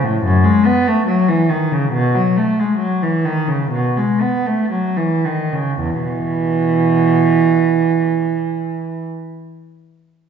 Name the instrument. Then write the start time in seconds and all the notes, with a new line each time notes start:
cello
0.04 A2
0.23 F#2
0.44 G#3
0.66 B3
0.87 A3
1.07 F#3
1.28 E3
1.50 D#3
1.72 C#3
1.93 B2
2.15 F#3
2.37 A3
2.60 G#3
2.78 F#3
3.02 E3
3.25 D#3
3.48 C#3
3.71 B2
3.97 G#3
4.22 B3
4.47 A3
4.71 F#3
4.97 E3
5.25 D#3
5.53 C#3
5.80 E2
6.02 B2 E3